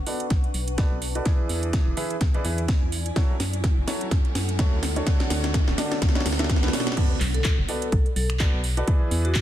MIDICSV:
0, 0, Header, 1, 8, 480
1, 0, Start_track
1, 0, Tempo, 476190
1, 1267, Time_signature, 4, 2, 24, 8
1, 9487, End_track
2, 0, Start_track
2, 0, Title_t, "Ambient pad"
2, 0, Program_c, 0, 92
2, 0, Note_on_c, 0, 62, 74
2, 0, Note_on_c, 0, 71, 87
2, 0, Note_on_c, 0, 78, 69
2, 0, Note_on_c, 0, 85, 76
2, 122, Note_off_c, 0, 78, 0
2, 122, Note_off_c, 0, 85, 0
2, 223, Note_on_c, 0, 81, 72
2, 1266, Note_off_c, 0, 81, 0
2, 1266, Note_on_c, 0, 64, 77
2, 1863, Note_on_c, 0, 80, 74
2, 1937, Note_on_c, 0, 74, 71
2, 2041, Note_off_c, 0, 71, 0
2, 2042, Note_off_c, 0, 62, 0
2, 3186, Note_off_c, 0, 74, 0
2, 3383, Note_on_c, 0, 69, 80
2, 3594, Note_on_c, 0, 78, 77
2, 3865, Note_off_c, 0, 80, 0
2, 4867, Note_on_c, 0, 62, 74
2, 5011, Note_on_c, 0, 73, 83
2, 5743, Note_off_c, 0, 64, 0
2, 5743, Note_off_c, 0, 69, 0
2, 7027, Note_off_c, 0, 62, 0
2, 7027, Note_off_c, 0, 78, 0
2, 7028, Note_off_c, 0, 73, 0
2, 9487, End_track
3, 0, Start_track
3, 0, Title_t, "Vibraphone"
3, 0, Program_c, 1, 11
3, 7403, Note_on_c, 1, 69, 93
3, 7504, Note_off_c, 1, 69, 0
3, 7747, Note_on_c, 1, 69, 90
3, 8123, Note_off_c, 1, 69, 0
3, 8227, Note_on_c, 1, 69, 93
3, 8359, Note_off_c, 1, 69, 0
3, 9322, Note_on_c, 1, 66, 91
3, 9424, Note_off_c, 1, 66, 0
3, 9487, End_track
4, 0, Start_track
4, 0, Title_t, "Upright piano"
4, 0, Program_c, 2, 0
4, 67, Note_on_c, 2, 59, 68
4, 67, Note_on_c, 2, 66, 63
4, 67, Note_on_c, 2, 69, 63
4, 67, Note_on_c, 2, 71, 62
4, 67, Note_on_c, 2, 74, 78
4, 242, Note_off_c, 2, 59, 0
4, 242, Note_off_c, 2, 66, 0
4, 242, Note_off_c, 2, 69, 0
4, 242, Note_off_c, 2, 71, 0
4, 242, Note_off_c, 2, 74, 0
4, 787, Note_on_c, 2, 59, 82
4, 787, Note_on_c, 2, 66, 75
4, 787, Note_on_c, 2, 69, 74
4, 787, Note_on_c, 2, 71, 76
4, 787, Note_on_c, 2, 74, 89
4, 962, Note_off_c, 2, 59, 0
4, 962, Note_off_c, 2, 66, 0
4, 962, Note_off_c, 2, 69, 0
4, 962, Note_off_c, 2, 71, 0
4, 962, Note_off_c, 2, 74, 0
4, 1163, Note_on_c, 2, 66, 73
4, 1163, Note_on_c, 2, 69, 65
4, 1163, Note_on_c, 2, 71, 65
4, 1163, Note_on_c, 2, 74, 81
4, 1251, Note_off_c, 2, 66, 0
4, 1251, Note_off_c, 2, 69, 0
4, 1251, Note_off_c, 2, 71, 0
4, 1251, Note_off_c, 2, 74, 0
4, 1267, Note_on_c, 2, 52, 88
4, 1267, Note_on_c, 2, 64, 80
4, 1267, Note_on_c, 2, 68, 81
4, 1267, Note_on_c, 2, 74, 97
4, 1268, Note_on_c, 2, 71, 83
4, 1962, Note_off_c, 2, 52, 0
4, 1962, Note_off_c, 2, 64, 0
4, 1962, Note_off_c, 2, 68, 0
4, 1962, Note_off_c, 2, 71, 0
4, 1962, Note_off_c, 2, 74, 0
4, 1986, Note_on_c, 2, 52, 91
4, 1986, Note_on_c, 2, 64, 80
4, 1986, Note_on_c, 2, 68, 84
4, 1986, Note_on_c, 2, 71, 81
4, 1986, Note_on_c, 2, 76, 99
4, 2162, Note_off_c, 2, 52, 0
4, 2162, Note_off_c, 2, 64, 0
4, 2162, Note_off_c, 2, 68, 0
4, 2162, Note_off_c, 2, 71, 0
4, 2162, Note_off_c, 2, 76, 0
4, 2362, Note_on_c, 2, 52, 84
4, 2362, Note_on_c, 2, 74, 95
4, 2363, Note_on_c, 2, 64, 78
4, 2363, Note_on_c, 2, 68, 78
4, 2363, Note_on_c, 2, 71, 79
4, 2442, Note_off_c, 2, 52, 0
4, 2442, Note_off_c, 2, 64, 0
4, 2442, Note_off_c, 2, 68, 0
4, 2442, Note_off_c, 2, 71, 0
4, 2442, Note_off_c, 2, 74, 0
4, 2466, Note_on_c, 2, 52, 79
4, 2466, Note_on_c, 2, 64, 74
4, 2466, Note_on_c, 2, 68, 71
4, 2466, Note_on_c, 2, 71, 73
4, 2466, Note_on_c, 2, 76, 86
4, 2641, Note_off_c, 2, 64, 0
4, 2641, Note_off_c, 2, 71, 0
4, 2642, Note_off_c, 2, 52, 0
4, 2642, Note_off_c, 2, 68, 0
4, 2642, Note_off_c, 2, 76, 0
4, 3186, Note_on_c, 2, 54, 81
4, 3186, Note_on_c, 2, 64, 74
4, 3186, Note_on_c, 2, 66, 72
4, 3186, Note_on_c, 2, 69, 73
4, 3186, Note_on_c, 2, 73, 89
4, 3361, Note_off_c, 2, 54, 0
4, 3361, Note_off_c, 2, 66, 0
4, 3362, Note_off_c, 2, 64, 0
4, 3362, Note_off_c, 2, 69, 0
4, 3362, Note_off_c, 2, 73, 0
4, 3906, Note_on_c, 2, 54, 71
4, 3906, Note_on_c, 2, 64, 67
4, 3906, Note_on_c, 2, 66, 66
4, 3906, Note_on_c, 2, 69, 67
4, 3906, Note_on_c, 2, 73, 82
4, 4081, Note_off_c, 2, 54, 0
4, 4081, Note_off_c, 2, 64, 0
4, 4081, Note_off_c, 2, 66, 0
4, 4081, Note_off_c, 2, 69, 0
4, 4081, Note_off_c, 2, 73, 0
4, 4626, Note_on_c, 2, 64, 83
4, 4626, Note_on_c, 2, 66, 80
4, 4626, Note_on_c, 2, 69, 80
4, 4626, Note_on_c, 2, 73, 93
4, 4801, Note_off_c, 2, 66, 0
4, 4801, Note_off_c, 2, 73, 0
4, 4802, Note_off_c, 2, 64, 0
4, 4802, Note_off_c, 2, 69, 0
4, 5003, Note_on_c, 2, 50, 75
4, 5003, Note_on_c, 2, 62, 68
4, 5003, Note_on_c, 2, 66, 71
4, 5003, Note_on_c, 2, 69, 70
4, 5003, Note_on_c, 2, 73, 83
4, 5091, Note_off_c, 2, 50, 0
4, 5091, Note_off_c, 2, 62, 0
4, 5091, Note_off_c, 2, 66, 0
4, 5091, Note_off_c, 2, 69, 0
4, 5091, Note_off_c, 2, 73, 0
4, 5107, Note_on_c, 2, 50, 92
4, 5107, Note_on_c, 2, 62, 84
4, 5107, Note_on_c, 2, 66, 83
4, 5107, Note_on_c, 2, 69, 85
4, 5107, Note_on_c, 2, 73, 101
4, 5802, Note_off_c, 2, 50, 0
4, 5802, Note_off_c, 2, 62, 0
4, 5802, Note_off_c, 2, 66, 0
4, 5802, Note_off_c, 2, 69, 0
4, 5802, Note_off_c, 2, 73, 0
4, 5826, Note_on_c, 2, 66, 86
4, 5826, Note_on_c, 2, 69, 86
4, 5826, Note_on_c, 2, 74, 102
4, 5827, Note_on_c, 2, 50, 93
4, 5827, Note_on_c, 2, 62, 85
4, 6002, Note_off_c, 2, 50, 0
4, 6002, Note_off_c, 2, 62, 0
4, 6002, Note_off_c, 2, 66, 0
4, 6002, Note_off_c, 2, 69, 0
4, 6002, Note_off_c, 2, 74, 0
4, 6202, Note_on_c, 2, 66, 81
4, 6202, Note_on_c, 2, 73, 98
4, 6203, Note_on_c, 2, 50, 90
4, 6203, Note_on_c, 2, 62, 82
4, 6203, Note_on_c, 2, 69, 83
4, 6282, Note_off_c, 2, 50, 0
4, 6282, Note_off_c, 2, 62, 0
4, 6282, Note_off_c, 2, 66, 0
4, 6282, Note_off_c, 2, 69, 0
4, 6282, Note_off_c, 2, 73, 0
4, 6443, Note_on_c, 2, 50, 86
4, 6443, Note_on_c, 2, 62, 79
4, 6443, Note_on_c, 2, 66, 77
4, 6443, Note_on_c, 2, 69, 77
4, 6443, Note_on_c, 2, 76, 93
4, 6598, Note_off_c, 2, 50, 0
4, 6598, Note_off_c, 2, 62, 0
4, 6598, Note_off_c, 2, 66, 0
4, 6598, Note_off_c, 2, 69, 0
4, 6598, Note_off_c, 2, 76, 0
4, 6682, Note_on_c, 2, 50, 87
4, 6682, Note_on_c, 2, 62, 79
4, 6682, Note_on_c, 2, 71, 96
4, 6683, Note_on_c, 2, 66, 80
4, 6683, Note_on_c, 2, 69, 80
4, 6771, Note_off_c, 2, 50, 0
4, 6771, Note_off_c, 2, 62, 0
4, 6771, Note_off_c, 2, 66, 0
4, 6771, Note_off_c, 2, 69, 0
4, 6771, Note_off_c, 2, 71, 0
4, 6786, Note_on_c, 2, 62, 78
4, 6786, Note_on_c, 2, 69, 81
4, 6787, Note_on_c, 2, 47, 90
4, 6787, Note_on_c, 2, 66, 81
4, 6787, Note_on_c, 2, 73, 94
4, 6995, Note_off_c, 2, 62, 0
4, 6995, Note_off_c, 2, 69, 0
4, 6996, Note_off_c, 2, 47, 0
4, 6996, Note_off_c, 2, 66, 0
4, 6996, Note_off_c, 2, 73, 0
4, 7026, Note_on_c, 2, 59, 81
4, 7026, Note_on_c, 2, 66, 72
4, 7026, Note_on_c, 2, 69, 73
4, 7026, Note_on_c, 2, 71, 75
4, 7026, Note_on_c, 2, 74, 91
4, 7201, Note_off_c, 2, 74, 0
4, 7202, Note_off_c, 2, 59, 0
4, 7202, Note_off_c, 2, 66, 0
4, 7202, Note_off_c, 2, 69, 0
4, 7202, Note_off_c, 2, 71, 0
4, 7746, Note_on_c, 2, 69, 67
4, 7747, Note_on_c, 2, 59, 73
4, 7747, Note_on_c, 2, 66, 68
4, 7747, Note_on_c, 2, 71, 67
4, 7747, Note_on_c, 2, 74, 80
4, 7922, Note_off_c, 2, 59, 0
4, 7922, Note_off_c, 2, 66, 0
4, 7922, Note_off_c, 2, 69, 0
4, 7922, Note_off_c, 2, 71, 0
4, 7922, Note_off_c, 2, 74, 0
4, 8467, Note_on_c, 2, 59, 86
4, 8467, Note_on_c, 2, 66, 78
4, 8467, Note_on_c, 2, 69, 76
4, 8467, Note_on_c, 2, 71, 80
4, 8467, Note_on_c, 2, 74, 94
4, 8642, Note_off_c, 2, 59, 0
4, 8642, Note_off_c, 2, 66, 0
4, 8642, Note_off_c, 2, 69, 0
4, 8642, Note_off_c, 2, 71, 0
4, 8642, Note_off_c, 2, 74, 0
4, 8843, Note_on_c, 2, 66, 75
4, 8843, Note_on_c, 2, 69, 69
4, 8843, Note_on_c, 2, 71, 68
4, 8843, Note_on_c, 2, 74, 85
4, 8931, Note_off_c, 2, 66, 0
4, 8931, Note_off_c, 2, 69, 0
4, 8931, Note_off_c, 2, 71, 0
4, 8931, Note_off_c, 2, 74, 0
4, 8946, Note_on_c, 2, 52, 94
4, 8946, Note_on_c, 2, 64, 85
4, 8946, Note_on_c, 2, 71, 87
4, 8946, Note_on_c, 2, 74, 104
4, 8947, Note_on_c, 2, 68, 84
4, 9487, Note_off_c, 2, 52, 0
4, 9487, Note_off_c, 2, 64, 0
4, 9487, Note_off_c, 2, 68, 0
4, 9487, Note_off_c, 2, 71, 0
4, 9487, Note_off_c, 2, 74, 0
4, 9487, End_track
5, 0, Start_track
5, 0, Title_t, "FM bass"
5, 0, Program_c, 3, 39
5, 306, Note_on_c, 3, 35, 99
5, 403, Note_off_c, 3, 35, 0
5, 546, Note_on_c, 3, 35, 105
5, 859, Note_off_c, 3, 35, 0
5, 922, Note_on_c, 3, 35, 87
5, 1218, Note_off_c, 3, 35, 0
5, 1506, Note_on_c, 3, 40, 98
5, 1819, Note_off_c, 3, 40, 0
5, 1882, Note_on_c, 3, 28, 88
5, 1956, Note_off_c, 3, 28, 0
5, 2226, Note_on_c, 3, 40, 104
5, 2323, Note_off_c, 3, 40, 0
5, 2466, Note_on_c, 3, 40, 108
5, 2779, Note_off_c, 3, 40, 0
5, 2842, Note_on_c, 3, 40, 85
5, 3138, Note_off_c, 3, 40, 0
5, 3426, Note_on_c, 3, 42, 98
5, 3739, Note_off_c, 3, 42, 0
5, 3803, Note_on_c, 3, 30, 90
5, 3876, Note_off_c, 3, 30, 0
5, 4147, Note_on_c, 3, 42, 103
5, 4243, Note_off_c, 3, 42, 0
5, 4386, Note_on_c, 3, 42, 106
5, 4699, Note_off_c, 3, 42, 0
5, 4762, Note_on_c, 3, 38, 88
5, 5058, Note_off_c, 3, 38, 0
5, 5347, Note_on_c, 3, 38, 100
5, 5659, Note_off_c, 3, 38, 0
5, 5722, Note_on_c, 3, 26, 90
5, 5796, Note_off_c, 3, 26, 0
5, 6066, Note_on_c, 3, 38, 102
5, 6163, Note_off_c, 3, 38, 0
5, 6306, Note_on_c, 3, 38, 108
5, 6619, Note_off_c, 3, 38, 0
5, 6683, Note_on_c, 3, 38, 100
5, 6756, Note_off_c, 3, 38, 0
5, 7267, Note_on_c, 3, 35, 101
5, 7579, Note_off_c, 3, 35, 0
5, 7642, Note_on_c, 3, 30, 91
5, 7716, Note_off_c, 3, 30, 0
5, 7987, Note_on_c, 3, 35, 103
5, 8083, Note_off_c, 3, 35, 0
5, 8226, Note_on_c, 3, 35, 104
5, 8539, Note_off_c, 3, 35, 0
5, 8603, Note_on_c, 3, 35, 89
5, 8898, Note_off_c, 3, 35, 0
5, 9186, Note_on_c, 3, 40, 100
5, 9487, Note_off_c, 3, 40, 0
5, 9487, End_track
6, 0, Start_track
6, 0, Title_t, "Impact"
6, 0, Program_c, 4, 103
6, 7027, Note_on_c, 4, 60, 77
6, 8947, Note_off_c, 4, 60, 0
6, 9487, End_track
7, 0, Start_track
7, 0, Title_t, "Riser"
7, 0, Program_c, 5, 103
7, 0, Note_on_c, 5, 60, 78
7, 7027, Note_off_c, 5, 60, 0
7, 9487, End_track
8, 0, Start_track
8, 0, Title_t, "Drums"
8, 65, Note_on_c, 9, 46, 101
8, 166, Note_off_c, 9, 46, 0
8, 202, Note_on_c, 9, 42, 52
8, 303, Note_off_c, 9, 42, 0
8, 306, Note_on_c, 9, 38, 51
8, 306, Note_on_c, 9, 42, 79
8, 307, Note_on_c, 9, 36, 117
8, 407, Note_off_c, 9, 38, 0
8, 407, Note_off_c, 9, 42, 0
8, 408, Note_off_c, 9, 36, 0
8, 442, Note_on_c, 9, 42, 37
8, 543, Note_off_c, 9, 42, 0
8, 546, Note_on_c, 9, 46, 102
8, 647, Note_off_c, 9, 46, 0
8, 681, Note_on_c, 9, 42, 52
8, 782, Note_off_c, 9, 42, 0
8, 785, Note_on_c, 9, 38, 57
8, 785, Note_on_c, 9, 42, 81
8, 787, Note_on_c, 9, 36, 116
8, 886, Note_off_c, 9, 38, 0
8, 886, Note_off_c, 9, 42, 0
8, 888, Note_off_c, 9, 36, 0
8, 1026, Note_on_c, 9, 46, 103
8, 1126, Note_off_c, 9, 46, 0
8, 1162, Note_on_c, 9, 42, 51
8, 1263, Note_off_c, 9, 42, 0
8, 1265, Note_on_c, 9, 38, 56
8, 1265, Note_on_c, 9, 42, 76
8, 1267, Note_on_c, 9, 36, 119
8, 1366, Note_off_c, 9, 38, 0
8, 1366, Note_off_c, 9, 42, 0
8, 1368, Note_off_c, 9, 36, 0
8, 1506, Note_on_c, 9, 46, 106
8, 1607, Note_off_c, 9, 46, 0
8, 1642, Note_on_c, 9, 42, 54
8, 1743, Note_off_c, 9, 42, 0
8, 1746, Note_on_c, 9, 38, 61
8, 1746, Note_on_c, 9, 42, 79
8, 1747, Note_on_c, 9, 36, 119
8, 1847, Note_off_c, 9, 36, 0
8, 1847, Note_off_c, 9, 38, 0
8, 1847, Note_off_c, 9, 42, 0
8, 1985, Note_on_c, 9, 46, 108
8, 2086, Note_off_c, 9, 46, 0
8, 2121, Note_on_c, 9, 42, 53
8, 2222, Note_off_c, 9, 42, 0
8, 2226, Note_on_c, 9, 38, 66
8, 2226, Note_on_c, 9, 42, 79
8, 2227, Note_on_c, 9, 36, 120
8, 2326, Note_off_c, 9, 38, 0
8, 2326, Note_off_c, 9, 42, 0
8, 2327, Note_off_c, 9, 36, 0
8, 2362, Note_on_c, 9, 42, 36
8, 2463, Note_off_c, 9, 42, 0
8, 2465, Note_on_c, 9, 46, 108
8, 2566, Note_off_c, 9, 46, 0
8, 2601, Note_on_c, 9, 42, 52
8, 2702, Note_off_c, 9, 42, 0
8, 2706, Note_on_c, 9, 36, 122
8, 2706, Note_on_c, 9, 38, 70
8, 2706, Note_on_c, 9, 42, 82
8, 2806, Note_off_c, 9, 38, 0
8, 2806, Note_off_c, 9, 42, 0
8, 2807, Note_off_c, 9, 36, 0
8, 2946, Note_on_c, 9, 46, 106
8, 3047, Note_off_c, 9, 46, 0
8, 3082, Note_on_c, 9, 42, 52
8, 3183, Note_off_c, 9, 42, 0
8, 3186, Note_on_c, 9, 36, 120
8, 3187, Note_on_c, 9, 38, 69
8, 3187, Note_on_c, 9, 42, 77
8, 3287, Note_off_c, 9, 36, 0
8, 3287, Note_off_c, 9, 38, 0
8, 3287, Note_off_c, 9, 42, 0
8, 3426, Note_on_c, 9, 38, 73
8, 3426, Note_on_c, 9, 46, 108
8, 3527, Note_off_c, 9, 38, 0
8, 3527, Note_off_c, 9, 46, 0
8, 3563, Note_on_c, 9, 42, 52
8, 3664, Note_off_c, 9, 42, 0
8, 3667, Note_on_c, 9, 36, 123
8, 3667, Note_on_c, 9, 38, 77
8, 3667, Note_on_c, 9, 42, 75
8, 3767, Note_off_c, 9, 36, 0
8, 3767, Note_off_c, 9, 38, 0
8, 3767, Note_off_c, 9, 42, 0
8, 3906, Note_on_c, 9, 38, 81
8, 3906, Note_on_c, 9, 46, 110
8, 4007, Note_off_c, 9, 38, 0
8, 4007, Note_off_c, 9, 46, 0
8, 4043, Note_on_c, 9, 42, 50
8, 4144, Note_off_c, 9, 42, 0
8, 4146, Note_on_c, 9, 38, 81
8, 4146, Note_on_c, 9, 42, 77
8, 4147, Note_on_c, 9, 36, 125
8, 4247, Note_off_c, 9, 36, 0
8, 4247, Note_off_c, 9, 38, 0
8, 4247, Note_off_c, 9, 42, 0
8, 4282, Note_on_c, 9, 42, 35
8, 4383, Note_off_c, 9, 42, 0
8, 4387, Note_on_c, 9, 38, 83
8, 4387, Note_on_c, 9, 46, 109
8, 4487, Note_off_c, 9, 38, 0
8, 4487, Note_off_c, 9, 46, 0
8, 4522, Note_on_c, 9, 42, 50
8, 4623, Note_off_c, 9, 42, 0
8, 4626, Note_on_c, 9, 38, 90
8, 4626, Note_on_c, 9, 42, 80
8, 4627, Note_on_c, 9, 36, 123
8, 4727, Note_off_c, 9, 36, 0
8, 4727, Note_off_c, 9, 38, 0
8, 4727, Note_off_c, 9, 42, 0
8, 4866, Note_on_c, 9, 38, 86
8, 4866, Note_on_c, 9, 46, 113
8, 4967, Note_off_c, 9, 38, 0
8, 4967, Note_off_c, 9, 46, 0
8, 5003, Note_on_c, 9, 42, 52
8, 5103, Note_off_c, 9, 42, 0
8, 5106, Note_on_c, 9, 38, 90
8, 5106, Note_on_c, 9, 42, 74
8, 5107, Note_on_c, 9, 36, 121
8, 5207, Note_off_c, 9, 36, 0
8, 5207, Note_off_c, 9, 38, 0
8, 5207, Note_off_c, 9, 42, 0
8, 5243, Note_on_c, 9, 38, 82
8, 5243, Note_on_c, 9, 42, 34
8, 5344, Note_off_c, 9, 38, 0
8, 5344, Note_off_c, 9, 42, 0
8, 5346, Note_on_c, 9, 38, 93
8, 5346, Note_on_c, 9, 46, 112
8, 5447, Note_off_c, 9, 38, 0
8, 5447, Note_off_c, 9, 46, 0
8, 5483, Note_on_c, 9, 38, 85
8, 5483, Note_on_c, 9, 42, 50
8, 5584, Note_off_c, 9, 38, 0
8, 5584, Note_off_c, 9, 42, 0
8, 5586, Note_on_c, 9, 36, 124
8, 5586, Note_on_c, 9, 38, 99
8, 5586, Note_on_c, 9, 42, 78
8, 5687, Note_off_c, 9, 36, 0
8, 5687, Note_off_c, 9, 38, 0
8, 5687, Note_off_c, 9, 42, 0
8, 5722, Note_on_c, 9, 38, 85
8, 5823, Note_off_c, 9, 38, 0
8, 5826, Note_on_c, 9, 38, 99
8, 5826, Note_on_c, 9, 46, 112
8, 5927, Note_off_c, 9, 38, 0
8, 5927, Note_off_c, 9, 46, 0
8, 5963, Note_on_c, 9, 38, 87
8, 5963, Note_on_c, 9, 42, 50
8, 6064, Note_off_c, 9, 38, 0
8, 6064, Note_off_c, 9, 42, 0
8, 6067, Note_on_c, 9, 36, 123
8, 6067, Note_on_c, 9, 38, 106
8, 6067, Note_on_c, 9, 42, 79
8, 6135, Note_off_c, 9, 38, 0
8, 6135, Note_on_c, 9, 38, 92
8, 6167, Note_off_c, 9, 36, 0
8, 6168, Note_off_c, 9, 42, 0
8, 6203, Note_off_c, 9, 38, 0
8, 6203, Note_on_c, 9, 38, 90
8, 6203, Note_on_c, 9, 42, 35
8, 6255, Note_off_c, 9, 38, 0
8, 6255, Note_on_c, 9, 38, 92
8, 6304, Note_off_c, 9, 42, 0
8, 6307, Note_off_c, 9, 38, 0
8, 6307, Note_on_c, 9, 38, 101
8, 6307, Note_on_c, 9, 46, 107
8, 6375, Note_off_c, 9, 38, 0
8, 6375, Note_on_c, 9, 38, 93
8, 6408, Note_off_c, 9, 46, 0
8, 6444, Note_off_c, 9, 38, 0
8, 6444, Note_on_c, 9, 38, 92
8, 6444, Note_on_c, 9, 42, 50
8, 6496, Note_off_c, 9, 38, 0
8, 6496, Note_on_c, 9, 38, 91
8, 6545, Note_off_c, 9, 42, 0
8, 6547, Note_off_c, 9, 38, 0
8, 6547, Note_on_c, 9, 36, 123
8, 6547, Note_on_c, 9, 38, 109
8, 6547, Note_on_c, 9, 42, 80
8, 6616, Note_off_c, 9, 38, 0
8, 6616, Note_on_c, 9, 38, 95
8, 6647, Note_off_c, 9, 36, 0
8, 6648, Note_off_c, 9, 42, 0
8, 6683, Note_off_c, 9, 38, 0
8, 6683, Note_on_c, 9, 38, 94
8, 6736, Note_off_c, 9, 38, 0
8, 6736, Note_on_c, 9, 38, 99
8, 6787, Note_off_c, 9, 38, 0
8, 6787, Note_on_c, 9, 38, 111
8, 6787, Note_on_c, 9, 46, 110
8, 6855, Note_off_c, 9, 38, 0
8, 6855, Note_on_c, 9, 38, 95
8, 6888, Note_off_c, 9, 46, 0
8, 6923, Note_off_c, 9, 38, 0
8, 6923, Note_on_c, 9, 38, 98
8, 6923, Note_on_c, 9, 42, 50
8, 6974, Note_off_c, 9, 38, 0
8, 6974, Note_on_c, 9, 38, 96
8, 7024, Note_off_c, 9, 42, 0
8, 7027, Note_on_c, 9, 36, 117
8, 7027, Note_on_c, 9, 42, 81
8, 7027, Note_on_c, 9, 49, 100
8, 7075, Note_off_c, 9, 38, 0
8, 7127, Note_off_c, 9, 42, 0
8, 7127, Note_off_c, 9, 49, 0
8, 7128, Note_off_c, 9, 36, 0
8, 7261, Note_on_c, 9, 39, 65
8, 7267, Note_on_c, 9, 46, 105
8, 7362, Note_off_c, 9, 39, 0
8, 7367, Note_off_c, 9, 46, 0
8, 7403, Note_on_c, 9, 42, 57
8, 7501, Note_on_c, 9, 39, 127
8, 7504, Note_off_c, 9, 42, 0
8, 7506, Note_on_c, 9, 42, 87
8, 7507, Note_on_c, 9, 36, 117
8, 7602, Note_off_c, 9, 39, 0
8, 7607, Note_off_c, 9, 42, 0
8, 7608, Note_off_c, 9, 36, 0
8, 7746, Note_on_c, 9, 46, 105
8, 7847, Note_off_c, 9, 46, 0
8, 7883, Note_on_c, 9, 42, 55
8, 7984, Note_off_c, 9, 42, 0
8, 7986, Note_on_c, 9, 42, 84
8, 7987, Note_on_c, 9, 36, 122
8, 8087, Note_off_c, 9, 42, 0
8, 8088, Note_off_c, 9, 36, 0
8, 8123, Note_on_c, 9, 42, 38
8, 8224, Note_off_c, 9, 42, 0
8, 8227, Note_on_c, 9, 46, 105
8, 8328, Note_off_c, 9, 46, 0
8, 8363, Note_on_c, 9, 26, 76
8, 8363, Note_on_c, 9, 42, 54
8, 8461, Note_on_c, 9, 39, 127
8, 8464, Note_off_c, 9, 26, 0
8, 8464, Note_off_c, 9, 42, 0
8, 8467, Note_on_c, 9, 36, 120
8, 8467, Note_on_c, 9, 42, 88
8, 8562, Note_off_c, 9, 39, 0
8, 8568, Note_off_c, 9, 36, 0
8, 8568, Note_off_c, 9, 42, 0
8, 8707, Note_on_c, 9, 46, 108
8, 8808, Note_off_c, 9, 46, 0
8, 8843, Note_on_c, 9, 42, 54
8, 8944, Note_off_c, 9, 42, 0
8, 8946, Note_on_c, 9, 42, 80
8, 8947, Note_on_c, 9, 36, 124
8, 9047, Note_off_c, 9, 42, 0
8, 9048, Note_off_c, 9, 36, 0
8, 9186, Note_on_c, 9, 46, 110
8, 9287, Note_off_c, 9, 46, 0
8, 9322, Note_on_c, 9, 42, 52
8, 9421, Note_on_c, 9, 39, 127
8, 9423, Note_off_c, 9, 42, 0
8, 9427, Note_on_c, 9, 36, 122
8, 9427, Note_on_c, 9, 42, 81
8, 9487, Note_off_c, 9, 36, 0
8, 9487, Note_off_c, 9, 39, 0
8, 9487, Note_off_c, 9, 42, 0
8, 9487, End_track
0, 0, End_of_file